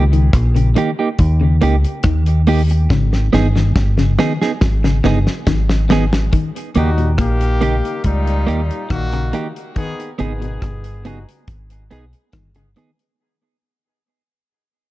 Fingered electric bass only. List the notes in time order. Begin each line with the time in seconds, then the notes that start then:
Already playing: C#2
0.34 A#1
1.20 D#2
1.63 C#2
2.05 D#2
2.91 G#1
3.34 G1
3.76 G1
4.62 G#1
5.05 G1
5.47 G#1
6.76 D#2
7.19 A#1
8.05 C#2
8.49 D#2
8.91 A#1
10.20 G#1
10.63 G1
11.49 G#1
11.92 B1
12.34 G1